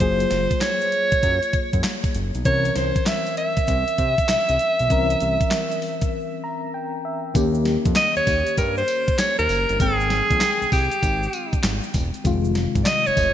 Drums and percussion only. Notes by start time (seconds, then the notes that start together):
0.00 kick, closed hi-hat, shaker
0.20 closed hi-hat, shaker
0.30 snare, closed hi-hat, shaker
0.50 kick, closed hi-hat, shaker
0.61 snare, clap, closed hi-hat, shaker
0.81 closed hi-hat, shaker
0.92 closed hi-hat
1.12 kick, closed hi-hat, shaker
1.23 kick, closed hi-hat, shaker
1.43 closed hi-hat, shaker
1.53 kick, closed hi-hat, shaker
1.73 kick, closed hi-hat, shaker
1.84 snare, clap, closed hi-hat, shaker
2.04 kick, closed hi-hat, shaker
2.14 closed hi-hat, shaker
2.34 closed hi-hat, shaker
2.45 kick, closed hi-hat, shaker
2.65 closed hi-hat, shaker
2.76 snare, closed hi-hat, shaker
2.96 kick, closed hi-hat, shaker
3.06 snare, clap, closed hi-hat, shaker
3.26 closed hi-hat, shaker
3.37 closed hi-hat
3.57 kick, closed hi-hat, shaker
3.67 kick, closed hi-hat, shaker
3.87 closed hi-hat, shaker
3.98 kick, closed hi-hat, shaker
4.18 kick, closed hi-hat, shaker
4.29 snare, clap, closed hi-hat, shaker
4.49 closed hi-hat, shaker
4.59 closed hi-hat, shaker
4.79 closed hi-hat, shaker
4.90 kick, closed hi-hat, shaker
5.10 closed hi-hat, shaker
5.20 closed hi-hat, shaker
5.41 kick, closed hi-hat, shaker
5.51 snare, clap, closed hi-hat, shaker
5.72 closed hi-hat, shaker
5.82 open hi-hat
6.01 kick, closed hi-hat, shaker
7.35 kick, closed hi-hat, tambourine, shaker
7.55 shaker
7.65 snare, closed hi-hat
7.85 kick, closed hi-hat, shaker
7.95 snare, clap, closed hi-hat, tambourine, shaker
8.16 shaker
8.27 kick, open hi-hat, tambourine, shaker
8.47 closed hi-hat, shaker
8.57 kick, closed hi-hat, tambourine, shaker
8.77 shaker
8.88 closed hi-hat, tambourine
9.08 kick, closed hi-hat, shaker
9.18 snare, clap, closed hi-hat, tambourine, shaker
9.39 shaker
9.49 open hi-hat, tambourine, shaker
9.69 closed hi-hat, shaker
9.80 kick, closed hi-hat, tambourine, shaker
10.00 shaker
10.10 snare, closed hi-hat
10.30 kick, closed hi-hat, shaker
10.41 snare, clap, closed hi-hat, tambourine, shaker
10.62 shaker
10.72 kick, open hi-hat, tambourine, shaker
10.91 closed hi-hat, shaker
11.02 kick, closed hi-hat, tambourine, shaker
11.23 shaker
11.33 closed hi-hat, tambourine
11.53 kick, closed hi-hat, shaker
11.63 snare, clap, closed hi-hat, tambourine, shaker
11.83 shaker
11.94 kick, open hi-hat, tambourine, shaker
12.14 closed hi-hat, shaker
12.25 kick, closed hi-hat, tambourine, shaker
12.44 shaker
12.55 snare, closed hi-hat
12.75 kick, closed hi-hat, shaker
12.86 snare, clap, closed hi-hat, tambourine, shaker
13.06 shaker
13.17 kick, open hi-hat, tambourine, shaker